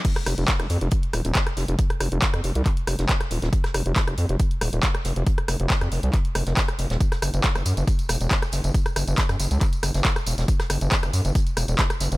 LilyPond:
<<
  \new Staff \with { instrumentName = "Analog synth bass" } { \clef bass \time 4/4 \key ges \lydian \tempo 4 = 138 r8 f,,16 f,,16 r16 f,,16 f,16 f,,16 r8 ees,,16 ees,,16 r8 f,,16 f,,16 | r8 f,,16 f,,16 r16 f,16 f,,16 c,16 r8 f,,16 f,,16 r8 ees,,16 ees,,16 | r8 f,,16 f,,16 r16 f,,16 f,16 f,,16 r8 ees,,16 ees,,16 r8 f,,16 f,,16 | r8 f,,16 f,,16 r16 f,16 f,,16 c,16 r8 f,,16 f,,16 r8 f,,16 ees,,16 |
r8 ges,,16 ges,,16 r16 ges,,16 ges,16 ges,,16 r8 e,,16 e,,16 r8 ges,,16 ges,,16 | r8 ges,,16 ges,,16 r16 ges,16 ges,,16 des,16 r8 ges,,16 ges,,16 r8 e,,16 e,,16 | r8 ges,,16 ges,,16 r16 ges,,16 ges,16 ges,,16 r8 e,,16 e,,16 r8 ges,,16 ges,,16 | }
  \new DrumStaff \with { instrumentName = "Drums" } \drummode { \time 4/4 <cymc hh bd>16 <hh ss sn>16 <hh hho ss>16 hh16 <hc hh bd sn>16 <hh ss>16 <hh hho>16 hh16 <hh bd>16 hh16 <hh hho ss>16 hh16 <hc hh bd sn>16 <hh ss>16 <hh hho sn>16 hh16 | <hh bd>16 <hh ss>16 <hh hho ss>16 hh16 <hc hh bd sn>16 <hh ss>16 <hh hho>16 hh16 <hc hh bd>16 hh16 <hh hho ss>16 <hh sn>16 <hc hh bd sn>16 <hh ss>16 <hh hho>16 <hh sn>16 | <hh bd>16 <hh ss sn>16 <hh hho ss>16 hh16 <hc hh bd sn>16 <hh ss>16 <hh hho>16 hh16 <hh bd>16 hh16 <hh hho ss>16 hh16 <hc hh bd sn>16 <hh ss>16 <hh hho sn>16 hh16 | <hh bd>16 <hh ss>16 <hh hho ss>16 hh16 <hc hh bd sn>16 <hh ss>16 <hh hho>16 hh16 <hc hh bd>16 hh16 <hh hho ss>16 <hh sn>16 <hc hh bd sn>16 <hh ss>16 <hh hho>16 <hh sn>16 |
<hh bd tamb>16 <hh ss sn tamb>16 <hh hho ss tamb>16 <hh tamb>16 <hc hh bd sn tamb>16 <hh ss tamb>16 <hh hho tamb>16 <hh tamb>16 <hh bd tamb>16 <hh tamb>16 <hh hho ss tamb>16 <hh tamb>16 <hc hh bd sn tamb>16 <hh ss tamb>16 <hh hho sn tamb>16 <hh tamb>16 | <hh bd tamb>16 <hh ss tamb>16 <hh hho ss tamb>16 <hh tamb>16 <hc hh bd sn tamb>16 <hh ss tamb>16 <hh hho tamb>16 <hh tamb>16 <hc hh bd tamb>16 <hh tamb>16 <hh hho ss tamb>16 <hh sn tamb>16 <hc hh bd sn tamb>16 <hh ss tamb>16 <hh hho tamb>16 <hh sn tamb>16 | <hh bd tamb>16 <hh ss sn tamb>16 <hh hho ss tamb>16 <hh tamb>16 <hc hh bd sn tamb>16 <hh ss tamb>16 <hh hho tamb>16 <hh tamb>16 <hh bd tamb>16 <hh tamb>16 <hh hho ss tamb>16 <hh tamb>16 <hc hh bd sn tamb>16 <hh ss tamb>16 <hh hho sn tamb>16 <hh tamb>16 | }
>>